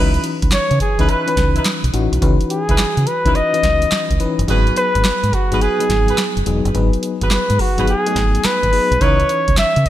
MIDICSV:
0, 0, Header, 1, 7, 480
1, 0, Start_track
1, 0, Key_signature, 4, "minor"
1, 0, Tempo, 566038
1, 1882, Time_signature, 4, 2, 24, 8
1, 8387, End_track
2, 0, Start_track
2, 0, Title_t, "Flugelhorn"
2, 0, Program_c, 0, 56
2, 453, Note_on_c, 0, 73, 100
2, 671, Note_off_c, 0, 73, 0
2, 690, Note_on_c, 0, 68, 87
2, 929, Note_on_c, 0, 71, 85
2, 941, Note_off_c, 0, 68, 0
2, 1405, Note_off_c, 0, 71, 0
2, 2127, Note_on_c, 0, 68, 82
2, 2605, Note_on_c, 0, 71, 91
2, 2618, Note_off_c, 0, 68, 0
2, 2846, Note_on_c, 0, 75, 111
2, 2858, Note_off_c, 0, 71, 0
2, 3564, Note_off_c, 0, 75, 0
2, 4049, Note_on_c, 0, 71, 106
2, 4529, Note_on_c, 0, 66, 86
2, 4542, Note_off_c, 0, 71, 0
2, 4768, Note_on_c, 0, 68, 93
2, 4781, Note_off_c, 0, 66, 0
2, 5485, Note_off_c, 0, 68, 0
2, 6209, Note_on_c, 0, 71, 88
2, 6450, Note_on_c, 0, 66, 78
2, 6463, Note_off_c, 0, 71, 0
2, 6686, Note_off_c, 0, 66, 0
2, 6691, Note_on_c, 0, 68, 93
2, 7167, Note_on_c, 0, 71, 103
2, 7180, Note_off_c, 0, 68, 0
2, 7649, Note_on_c, 0, 73, 115
2, 7662, Note_off_c, 0, 71, 0
2, 8122, Note_off_c, 0, 73, 0
2, 8127, Note_on_c, 0, 76, 106
2, 8382, Note_off_c, 0, 76, 0
2, 8387, End_track
3, 0, Start_track
3, 0, Title_t, "Horn section"
3, 0, Program_c, 1, 61
3, 0, Note_on_c, 1, 63, 84
3, 0, Note_on_c, 1, 64, 79
3, 0, Note_on_c, 1, 71, 100
3, 187, Note_off_c, 1, 63, 0
3, 188, Note_off_c, 1, 64, 0
3, 190, Note_off_c, 1, 71, 0
3, 837, Note_on_c, 1, 63, 80
3, 840, Note_on_c, 1, 64, 74
3, 842, Note_on_c, 1, 71, 89
3, 909, Note_off_c, 1, 63, 0
3, 912, Note_off_c, 1, 64, 0
3, 914, Note_off_c, 1, 71, 0
3, 919, Note_on_c, 1, 63, 73
3, 922, Note_on_c, 1, 64, 70
3, 924, Note_on_c, 1, 71, 85
3, 1087, Note_off_c, 1, 63, 0
3, 1089, Note_off_c, 1, 64, 0
3, 1090, Note_off_c, 1, 71, 0
3, 1319, Note_on_c, 1, 63, 77
3, 1321, Note_on_c, 1, 64, 64
3, 1324, Note_on_c, 1, 71, 84
3, 1416, Note_off_c, 1, 63, 0
3, 1417, Note_off_c, 1, 64, 0
3, 1418, Note_off_c, 1, 71, 0
3, 2279, Note_on_c, 1, 63, 70
3, 2281, Note_on_c, 1, 64, 67
3, 2284, Note_on_c, 1, 71, 84
3, 2376, Note_off_c, 1, 63, 0
3, 2377, Note_off_c, 1, 64, 0
3, 2378, Note_off_c, 1, 71, 0
3, 2758, Note_on_c, 1, 63, 82
3, 2760, Note_on_c, 1, 64, 74
3, 2764, Note_on_c, 1, 71, 86
3, 2855, Note_off_c, 1, 63, 0
3, 2856, Note_off_c, 1, 64, 0
3, 2858, Note_off_c, 1, 71, 0
3, 3798, Note_on_c, 1, 66, 94
3, 3801, Note_on_c, 1, 68, 86
3, 3804, Note_on_c, 1, 71, 107
3, 4027, Note_off_c, 1, 66, 0
3, 4028, Note_off_c, 1, 68, 0
3, 4030, Note_off_c, 1, 71, 0
3, 4678, Note_on_c, 1, 66, 82
3, 4680, Note_on_c, 1, 68, 74
3, 4683, Note_on_c, 1, 71, 92
3, 4748, Note_off_c, 1, 66, 0
3, 4751, Note_off_c, 1, 68, 0
3, 4753, Note_off_c, 1, 71, 0
3, 4759, Note_on_c, 1, 66, 76
3, 4761, Note_on_c, 1, 68, 70
3, 4763, Note_on_c, 1, 71, 83
3, 4927, Note_off_c, 1, 66, 0
3, 4928, Note_off_c, 1, 68, 0
3, 4929, Note_off_c, 1, 71, 0
3, 5157, Note_on_c, 1, 66, 79
3, 5159, Note_on_c, 1, 68, 63
3, 5162, Note_on_c, 1, 71, 83
3, 5255, Note_off_c, 1, 66, 0
3, 5256, Note_off_c, 1, 68, 0
3, 5257, Note_off_c, 1, 71, 0
3, 6118, Note_on_c, 1, 66, 73
3, 6121, Note_on_c, 1, 68, 66
3, 6122, Note_on_c, 1, 71, 81
3, 6215, Note_off_c, 1, 66, 0
3, 6217, Note_off_c, 1, 68, 0
3, 6217, Note_off_c, 1, 71, 0
3, 6598, Note_on_c, 1, 66, 78
3, 6600, Note_on_c, 1, 68, 76
3, 6603, Note_on_c, 1, 71, 91
3, 6695, Note_off_c, 1, 66, 0
3, 6696, Note_off_c, 1, 68, 0
3, 6698, Note_off_c, 1, 71, 0
3, 7638, Note_on_c, 1, 63, 95
3, 7641, Note_on_c, 1, 64, 86
3, 7643, Note_on_c, 1, 71, 106
3, 7867, Note_off_c, 1, 63, 0
3, 7869, Note_off_c, 1, 64, 0
3, 7869, Note_off_c, 1, 71, 0
3, 8387, End_track
4, 0, Start_track
4, 0, Title_t, "FM electric piano"
4, 0, Program_c, 2, 5
4, 0, Note_on_c, 2, 52, 84
4, 0, Note_on_c, 2, 61, 71
4, 0, Note_on_c, 2, 63, 76
4, 0, Note_on_c, 2, 66, 51
4, 0, Note_on_c, 2, 71, 86
4, 100, Control_c, 2, 64, 127
4, 110, Note_off_c, 2, 66, 0
4, 664, Note_off_c, 2, 52, 0
4, 666, Note_off_c, 2, 61, 0
4, 667, Note_off_c, 2, 63, 0
4, 669, Note_off_c, 2, 71, 0
4, 836, Note_on_c, 2, 52, 76
4, 839, Note_on_c, 2, 61, 73
4, 843, Note_on_c, 2, 63, 70
4, 847, Note_on_c, 2, 71, 85
4, 1025, Note_off_c, 2, 52, 0
4, 1026, Note_off_c, 2, 61, 0
4, 1028, Note_off_c, 2, 63, 0
4, 1030, Note_off_c, 2, 71, 0
4, 1077, Note_on_c, 2, 52, 73
4, 1080, Note_on_c, 2, 61, 71
4, 1085, Note_on_c, 2, 63, 68
4, 1088, Note_on_c, 2, 71, 90
4, 1571, Note_off_c, 2, 52, 0
4, 1573, Note_off_c, 2, 61, 0
4, 1575, Note_off_c, 2, 63, 0
4, 1577, Note_off_c, 2, 71, 0
4, 1636, Note_on_c, 2, 52, 89
4, 1639, Note_on_c, 2, 61, 77
4, 1643, Note_on_c, 2, 63, 86
4, 1646, Note_on_c, 2, 66, 100
4, 1851, Note_off_c, 2, 52, 0
4, 1853, Note_off_c, 2, 61, 0
4, 1855, Note_off_c, 2, 63, 0
4, 1857, Note_off_c, 2, 66, 0
4, 1878, Note_on_c, 2, 52, 90
4, 1881, Note_on_c, 2, 61, 82
4, 1884, Note_on_c, 2, 63, 74
4, 1888, Note_on_c, 2, 71, 99
4, 2585, Note_off_c, 2, 52, 0
4, 2586, Note_off_c, 2, 61, 0
4, 2588, Note_off_c, 2, 63, 0
4, 2590, Note_off_c, 2, 71, 0
4, 2756, Note_on_c, 2, 52, 75
4, 2759, Note_on_c, 2, 61, 73
4, 2762, Note_on_c, 2, 63, 73
4, 2766, Note_on_c, 2, 71, 89
4, 2944, Note_off_c, 2, 52, 0
4, 2946, Note_off_c, 2, 61, 0
4, 2948, Note_off_c, 2, 63, 0
4, 2950, Note_off_c, 2, 71, 0
4, 2995, Note_on_c, 2, 52, 76
4, 2999, Note_on_c, 2, 61, 72
4, 3002, Note_on_c, 2, 63, 66
4, 3005, Note_on_c, 2, 71, 84
4, 3490, Note_off_c, 2, 52, 0
4, 3492, Note_off_c, 2, 61, 0
4, 3494, Note_off_c, 2, 63, 0
4, 3495, Note_off_c, 2, 71, 0
4, 3556, Note_on_c, 2, 52, 91
4, 3560, Note_on_c, 2, 61, 85
4, 3563, Note_on_c, 2, 63, 82
4, 3566, Note_on_c, 2, 71, 104
4, 3772, Note_off_c, 2, 52, 0
4, 3773, Note_off_c, 2, 61, 0
4, 3775, Note_off_c, 2, 63, 0
4, 3776, Note_off_c, 2, 71, 0
4, 3794, Note_on_c, 2, 54, 89
4, 3797, Note_on_c, 2, 59, 78
4, 3801, Note_on_c, 2, 63, 80
4, 3805, Note_on_c, 2, 68, 97
4, 3811, Control_c, 2, 64, 0
4, 3976, Control_c, 2, 64, 127
4, 4503, Note_off_c, 2, 54, 0
4, 4505, Note_off_c, 2, 59, 0
4, 4506, Note_off_c, 2, 63, 0
4, 4508, Note_off_c, 2, 68, 0
4, 4674, Note_on_c, 2, 54, 77
4, 4678, Note_on_c, 2, 59, 75
4, 4681, Note_on_c, 2, 63, 73
4, 4684, Note_on_c, 2, 68, 85
4, 4864, Note_off_c, 2, 54, 0
4, 4865, Note_off_c, 2, 59, 0
4, 4867, Note_off_c, 2, 63, 0
4, 4869, Note_off_c, 2, 68, 0
4, 4915, Note_on_c, 2, 54, 79
4, 4919, Note_on_c, 2, 59, 74
4, 4921, Note_on_c, 2, 63, 73
4, 4925, Note_on_c, 2, 68, 81
4, 5410, Note_off_c, 2, 54, 0
4, 5412, Note_off_c, 2, 59, 0
4, 5413, Note_off_c, 2, 63, 0
4, 5415, Note_off_c, 2, 68, 0
4, 5477, Note_on_c, 2, 54, 88
4, 5479, Note_on_c, 2, 59, 79
4, 5483, Note_on_c, 2, 63, 78
4, 5486, Note_on_c, 2, 68, 99
4, 5692, Note_off_c, 2, 54, 0
4, 5693, Note_off_c, 2, 59, 0
4, 5695, Note_off_c, 2, 63, 0
4, 5697, Note_off_c, 2, 68, 0
4, 5714, Note_on_c, 2, 54, 89
4, 5718, Note_on_c, 2, 59, 76
4, 5721, Note_on_c, 2, 63, 76
4, 5725, Note_on_c, 2, 71, 94
4, 6423, Note_off_c, 2, 54, 0
4, 6425, Note_off_c, 2, 59, 0
4, 6427, Note_off_c, 2, 63, 0
4, 6428, Note_off_c, 2, 71, 0
4, 6594, Note_on_c, 2, 54, 81
4, 6597, Note_on_c, 2, 59, 66
4, 6601, Note_on_c, 2, 63, 67
4, 6605, Note_on_c, 2, 68, 84
4, 6784, Note_off_c, 2, 54, 0
4, 6785, Note_off_c, 2, 59, 0
4, 6787, Note_off_c, 2, 63, 0
4, 6789, Note_off_c, 2, 68, 0
4, 6837, Note_on_c, 2, 54, 75
4, 6839, Note_on_c, 2, 57, 56
4, 6843, Note_on_c, 2, 63, 69
4, 6846, Note_on_c, 2, 68, 84
4, 6877, Note_off_c, 2, 57, 0
4, 6896, Note_on_c, 2, 59, 67
4, 7331, Note_off_c, 2, 54, 0
4, 7334, Note_off_c, 2, 63, 0
4, 7336, Note_off_c, 2, 68, 0
4, 7361, Note_off_c, 2, 59, 0
4, 7397, Note_on_c, 2, 54, 67
4, 7399, Note_on_c, 2, 59, 72
4, 7403, Note_on_c, 2, 63, 66
4, 7407, Note_on_c, 2, 68, 80
4, 7612, Note_off_c, 2, 54, 0
4, 7613, Note_off_c, 2, 59, 0
4, 7615, Note_off_c, 2, 63, 0
4, 7617, Note_off_c, 2, 68, 0
4, 7636, Note_on_c, 2, 52, 72
4, 7639, Note_on_c, 2, 61, 71
4, 7643, Note_on_c, 2, 63, 68
4, 7646, Note_on_c, 2, 71, 79
4, 7654, Control_c, 2, 64, 0
4, 7814, Control_c, 2, 64, 127
4, 8344, Note_off_c, 2, 52, 0
4, 8346, Note_off_c, 2, 61, 0
4, 8348, Note_off_c, 2, 63, 0
4, 8349, Note_off_c, 2, 71, 0
4, 8387, End_track
5, 0, Start_track
5, 0, Title_t, "Fingered electric bass"
5, 0, Program_c, 3, 33
5, 0, Note_on_c, 3, 37, 107
5, 146, Note_off_c, 3, 37, 0
5, 363, Note_on_c, 3, 37, 86
5, 424, Note_off_c, 3, 37, 0
5, 601, Note_on_c, 3, 49, 101
5, 663, Note_off_c, 3, 49, 0
5, 840, Note_on_c, 3, 37, 88
5, 903, Note_off_c, 3, 37, 0
5, 1161, Note_on_c, 3, 37, 86
5, 1346, Note_off_c, 3, 37, 0
5, 1559, Note_on_c, 3, 35, 79
5, 1622, Note_off_c, 3, 35, 0
5, 1640, Note_on_c, 3, 33, 92
5, 1763, Note_off_c, 3, 33, 0
5, 1798, Note_on_c, 3, 35, 91
5, 1861, Note_off_c, 3, 35, 0
5, 1883, Note_on_c, 3, 37, 107
5, 2005, Note_off_c, 3, 37, 0
5, 2283, Note_on_c, 3, 37, 82
5, 2345, Note_off_c, 3, 37, 0
5, 2519, Note_on_c, 3, 49, 85
5, 2582, Note_off_c, 3, 49, 0
5, 2760, Note_on_c, 3, 37, 86
5, 2823, Note_off_c, 3, 37, 0
5, 3081, Note_on_c, 3, 37, 91
5, 3266, Note_off_c, 3, 37, 0
5, 3481, Note_on_c, 3, 37, 78
5, 3543, Note_off_c, 3, 37, 0
5, 3720, Note_on_c, 3, 30, 90
5, 3782, Note_off_c, 3, 30, 0
5, 3802, Note_on_c, 3, 32, 104
5, 3987, Note_off_c, 3, 32, 0
5, 4202, Note_on_c, 3, 32, 88
5, 4264, Note_off_c, 3, 32, 0
5, 4438, Note_on_c, 3, 44, 92
5, 4501, Note_off_c, 3, 44, 0
5, 4680, Note_on_c, 3, 32, 88
5, 4742, Note_off_c, 3, 32, 0
5, 5000, Note_on_c, 3, 32, 89
5, 5186, Note_off_c, 3, 32, 0
5, 5399, Note_on_c, 3, 30, 84
5, 5462, Note_off_c, 3, 30, 0
5, 5481, Note_on_c, 3, 28, 93
5, 5604, Note_off_c, 3, 28, 0
5, 5639, Note_on_c, 3, 30, 96
5, 5702, Note_off_c, 3, 30, 0
5, 5722, Note_on_c, 3, 32, 104
5, 5844, Note_off_c, 3, 32, 0
5, 6121, Note_on_c, 3, 32, 84
5, 6183, Note_off_c, 3, 32, 0
5, 6359, Note_on_c, 3, 44, 102
5, 6422, Note_off_c, 3, 44, 0
5, 6598, Note_on_c, 3, 32, 84
5, 6661, Note_off_c, 3, 32, 0
5, 6920, Note_on_c, 3, 32, 88
5, 7105, Note_off_c, 3, 32, 0
5, 7320, Note_on_c, 3, 32, 83
5, 7383, Note_off_c, 3, 32, 0
5, 7558, Note_on_c, 3, 35, 92
5, 7621, Note_off_c, 3, 35, 0
5, 7641, Note_on_c, 3, 37, 102
5, 7826, Note_off_c, 3, 37, 0
5, 8041, Note_on_c, 3, 37, 88
5, 8103, Note_off_c, 3, 37, 0
5, 8280, Note_on_c, 3, 49, 94
5, 8343, Note_off_c, 3, 49, 0
5, 8387, End_track
6, 0, Start_track
6, 0, Title_t, "Muted fingered electric bass strokes"
6, 2360, Note_on_c, 9, 29, 48
6, 2445, Note_off_c, 9, 29, 0
6, 3321, Note_on_c, 9, 29, 45
6, 3405, Note_off_c, 9, 29, 0
6, 6199, Note_on_c, 9, 29, 47
6, 6284, Note_off_c, 9, 29, 0
6, 7159, Note_on_c, 9, 29, 45
6, 7244, Note_off_c, 9, 29, 0
6, 8121, Note_on_c, 9, 29, 50
6, 8205, Note_off_c, 9, 29, 0
6, 8387, End_track
7, 0, Start_track
7, 0, Title_t, "Drums"
7, 119, Note_on_c, 9, 42, 47
7, 201, Note_off_c, 9, 42, 0
7, 201, Note_on_c, 9, 42, 67
7, 285, Note_off_c, 9, 42, 0
7, 359, Note_on_c, 9, 42, 56
7, 362, Note_on_c, 9, 36, 101
7, 437, Note_on_c, 9, 39, 85
7, 438, Note_on_c, 9, 38, 104
7, 443, Note_off_c, 9, 42, 0
7, 443, Note_on_c, 9, 42, 76
7, 447, Note_off_c, 9, 36, 0
7, 522, Note_off_c, 9, 39, 0
7, 523, Note_off_c, 9, 38, 0
7, 528, Note_off_c, 9, 42, 0
7, 600, Note_on_c, 9, 42, 52
7, 680, Note_off_c, 9, 42, 0
7, 680, Note_on_c, 9, 36, 82
7, 680, Note_on_c, 9, 42, 74
7, 764, Note_off_c, 9, 36, 0
7, 765, Note_off_c, 9, 42, 0
7, 839, Note_on_c, 9, 36, 98
7, 839, Note_on_c, 9, 42, 55
7, 921, Note_off_c, 9, 42, 0
7, 921, Note_on_c, 9, 42, 68
7, 924, Note_off_c, 9, 36, 0
7, 1006, Note_off_c, 9, 42, 0
7, 1082, Note_on_c, 9, 42, 59
7, 1161, Note_on_c, 9, 36, 86
7, 1163, Note_off_c, 9, 42, 0
7, 1163, Note_on_c, 9, 42, 77
7, 1165, Note_on_c, 9, 38, 69
7, 1246, Note_off_c, 9, 36, 0
7, 1248, Note_off_c, 9, 42, 0
7, 1249, Note_off_c, 9, 38, 0
7, 1320, Note_on_c, 9, 42, 55
7, 1401, Note_on_c, 9, 39, 90
7, 1403, Note_off_c, 9, 42, 0
7, 1403, Note_on_c, 9, 38, 102
7, 1403, Note_on_c, 9, 42, 70
7, 1486, Note_off_c, 9, 39, 0
7, 1487, Note_off_c, 9, 38, 0
7, 1488, Note_off_c, 9, 42, 0
7, 1561, Note_on_c, 9, 42, 51
7, 1642, Note_off_c, 9, 42, 0
7, 1642, Note_on_c, 9, 42, 67
7, 1727, Note_off_c, 9, 42, 0
7, 1804, Note_on_c, 9, 42, 50
7, 1882, Note_on_c, 9, 36, 127
7, 1883, Note_off_c, 9, 42, 0
7, 1883, Note_on_c, 9, 42, 83
7, 1967, Note_off_c, 9, 36, 0
7, 1968, Note_off_c, 9, 42, 0
7, 2040, Note_on_c, 9, 42, 45
7, 2122, Note_off_c, 9, 42, 0
7, 2122, Note_on_c, 9, 42, 67
7, 2206, Note_off_c, 9, 42, 0
7, 2280, Note_on_c, 9, 42, 58
7, 2282, Note_on_c, 9, 36, 105
7, 2358, Note_on_c, 9, 39, 91
7, 2360, Note_on_c, 9, 38, 104
7, 2364, Note_off_c, 9, 42, 0
7, 2364, Note_on_c, 9, 42, 79
7, 2367, Note_off_c, 9, 36, 0
7, 2443, Note_off_c, 9, 39, 0
7, 2444, Note_off_c, 9, 38, 0
7, 2449, Note_off_c, 9, 42, 0
7, 2521, Note_on_c, 9, 42, 50
7, 2601, Note_off_c, 9, 42, 0
7, 2601, Note_on_c, 9, 42, 64
7, 2686, Note_off_c, 9, 42, 0
7, 2760, Note_on_c, 9, 36, 98
7, 2761, Note_on_c, 9, 42, 55
7, 2842, Note_off_c, 9, 42, 0
7, 2842, Note_on_c, 9, 42, 66
7, 2845, Note_off_c, 9, 36, 0
7, 2927, Note_off_c, 9, 42, 0
7, 3002, Note_on_c, 9, 42, 65
7, 3080, Note_on_c, 9, 36, 81
7, 3082, Note_off_c, 9, 42, 0
7, 3082, Note_on_c, 9, 42, 69
7, 3084, Note_on_c, 9, 38, 70
7, 3165, Note_off_c, 9, 36, 0
7, 3167, Note_off_c, 9, 42, 0
7, 3168, Note_off_c, 9, 38, 0
7, 3239, Note_on_c, 9, 42, 56
7, 3320, Note_on_c, 9, 39, 85
7, 3322, Note_off_c, 9, 42, 0
7, 3322, Note_on_c, 9, 38, 109
7, 3322, Note_on_c, 9, 42, 76
7, 3405, Note_off_c, 9, 39, 0
7, 3406, Note_off_c, 9, 38, 0
7, 3406, Note_off_c, 9, 42, 0
7, 3481, Note_on_c, 9, 36, 84
7, 3481, Note_on_c, 9, 42, 51
7, 3561, Note_off_c, 9, 42, 0
7, 3561, Note_on_c, 9, 42, 63
7, 3565, Note_off_c, 9, 36, 0
7, 3646, Note_off_c, 9, 42, 0
7, 3724, Note_on_c, 9, 42, 54
7, 3802, Note_off_c, 9, 42, 0
7, 3802, Note_on_c, 9, 36, 123
7, 3802, Note_on_c, 9, 42, 84
7, 3886, Note_off_c, 9, 36, 0
7, 3887, Note_off_c, 9, 42, 0
7, 3960, Note_on_c, 9, 42, 43
7, 4040, Note_off_c, 9, 42, 0
7, 4040, Note_on_c, 9, 42, 74
7, 4125, Note_off_c, 9, 42, 0
7, 4200, Note_on_c, 9, 42, 54
7, 4202, Note_on_c, 9, 36, 99
7, 4278, Note_on_c, 9, 39, 84
7, 4279, Note_on_c, 9, 38, 119
7, 4284, Note_off_c, 9, 42, 0
7, 4284, Note_on_c, 9, 42, 79
7, 4287, Note_off_c, 9, 36, 0
7, 4362, Note_off_c, 9, 39, 0
7, 4364, Note_off_c, 9, 38, 0
7, 4369, Note_off_c, 9, 42, 0
7, 4440, Note_on_c, 9, 42, 54
7, 4520, Note_off_c, 9, 42, 0
7, 4520, Note_on_c, 9, 36, 88
7, 4520, Note_on_c, 9, 42, 62
7, 4605, Note_off_c, 9, 36, 0
7, 4605, Note_off_c, 9, 42, 0
7, 4679, Note_on_c, 9, 36, 103
7, 4679, Note_on_c, 9, 42, 58
7, 4761, Note_off_c, 9, 42, 0
7, 4761, Note_on_c, 9, 42, 67
7, 4764, Note_off_c, 9, 36, 0
7, 4846, Note_off_c, 9, 42, 0
7, 4922, Note_on_c, 9, 42, 62
7, 5000, Note_on_c, 9, 36, 90
7, 5001, Note_off_c, 9, 42, 0
7, 5001, Note_on_c, 9, 42, 73
7, 5003, Note_on_c, 9, 38, 69
7, 5085, Note_off_c, 9, 36, 0
7, 5086, Note_off_c, 9, 42, 0
7, 5088, Note_off_c, 9, 38, 0
7, 5158, Note_on_c, 9, 42, 56
7, 5240, Note_on_c, 9, 39, 86
7, 5241, Note_off_c, 9, 42, 0
7, 5241, Note_on_c, 9, 38, 111
7, 5241, Note_on_c, 9, 42, 73
7, 5324, Note_off_c, 9, 39, 0
7, 5326, Note_off_c, 9, 38, 0
7, 5326, Note_off_c, 9, 42, 0
7, 5401, Note_on_c, 9, 42, 53
7, 5480, Note_off_c, 9, 42, 0
7, 5480, Note_on_c, 9, 42, 66
7, 5565, Note_off_c, 9, 42, 0
7, 5643, Note_on_c, 9, 42, 47
7, 5721, Note_off_c, 9, 42, 0
7, 5721, Note_on_c, 9, 36, 115
7, 5721, Note_on_c, 9, 42, 78
7, 5806, Note_off_c, 9, 36, 0
7, 5806, Note_off_c, 9, 42, 0
7, 5880, Note_on_c, 9, 42, 46
7, 5960, Note_off_c, 9, 42, 0
7, 5960, Note_on_c, 9, 42, 73
7, 6045, Note_off_c, 9, 42, 0
7, 6118, Note_on_c, 9, 42, 55
7, 6121, Note_on_c, 9, 36, 101
7, 6196, Note_on_c, 9, 39, 87
7, 6198, Note_on_c, 9, 38, 109
7, 6203, Note_off_c, 9, 42, 0
7, 6203, Note_on_c, 9, 42, 73
7, 6206, Note_off_c, 9, 36, 0
7, 6281, Note_off_c, 9, 39, 0
7, 6283, Note_off_c, 9, 38, 0
7, 6288, Note_off_c, 9, 42, 0
7, 6358, Note_on_c, 9, 42, 50
7, 6438, Note_on_c, 9, 46, 68
7, 6439, Note_on_c, 9, 36, 84
7, 6443, Note_off_c, 9, 42, 0
7, 6523, Note_off_c, 9, 36, 0
7, 6523, Note_off_c, 9, 46, 0
7, 6597, Note_on_c, 9, 42, 61
7, 6598, Note_on_c, 9, 36, 96
7, 6678, Note_off_c, 9, 42, 0
7, 6678, Note_on_c, 9, 42, 68
7, 6683, Note_off_c, 9, 36, 0
7, 6763, Note_off_c, 9, 42, 0
7, 6839, Note_on_c, 9, 42, 59
7, 6919, Note_on_c, 9, 36, 92
7, 6920, Note_off_c, 9, 42, 0
7, 6920, Note_on_c, 9, 42, 70
7, 6922, Note_on_c, 9, 38, 72
7, 7004, Note_off_c, 9, 36, 0
7, 7005, Note_off_c, 9, 42, 0
7, 7007, Note_off_c, 9, 38, 0
7, 7079, Note_on_c, 9, 42, 54
7, 7159, Note_on_c, 9, 39, 86
7, 7161, Note_off_c, 9, 42, 0
7, 7161, Note_on_c, 9, 38, 101
7, 7161, Note_on_c, 9, 42, 72
7, 7244, Note_off_c, 9, 39, 0
7, 7246, Note_off_c, 9, 38, 0
7, 7246, Note_off_c, 9, 42, 0
7, 7320, Note_on_c, 9, 36, 86
7, 7321, Note_on_c, 9, 42, 54
7, 7401, Note_on_c, 9, 46, 63
7, 7405, Note_off_c, 9, 36, 0
7, 7406, Note_off_c, 9, 42, 0
7, 7486, Note_off_c, 9, 46, 0
7, 7562, Note_on_c, 9, 42, 49
7, 7640, Note_on_c, 9, 36, 120
7, 7641, Note_off_c, 9, 42, 0
7, 7641, Note_on_c, 9, 42, 83
7, 7725, Note_off_c, 9, 36, 0
7, 7725, Note_off_c, 9, 42, 0
7, 7799, Note_on_c, 9, 42, 46
7, 7880, Note_off_c, 9, 42, 0
7, 7880, Note_on_c, 9, 42, 68
7, 7965, Note_off_c, 9, 42, 0
7, 8037, Note_on_c, 9, 42, 54
7, 8041, Note_on_c, 9, 36, 104
7, 8116, Note_on_c, 9, 39, 92
7, 8118, Note_on_c, 9, 38, 107
7, 8122, Note_off_c, 9, 42, 0
7, 8123, Note_on_c, 9, 42, 77
7, 8126, Note_off_c, 9, 36, 0
7, 8201, Note_off_c, 9, 39, 0
7, 8203, Note_off_c, 9, 38, 0
7, 8208, Note_off_c, 9, 42, 0
7, 8279, Note_on_c, 9, 42, 52
7, 8359, Note_off_c, 9, 42, 0
7, 8359, Note_on_c, 9, 36, 91
7, 8359, Note_on_c, 9, 42, 67
7, 8387, Note_off_c, 9, 36, 0
7, 8387, Note_off_c, 9, 42, 0
7, 8387, End_track
0, 0, End_of_file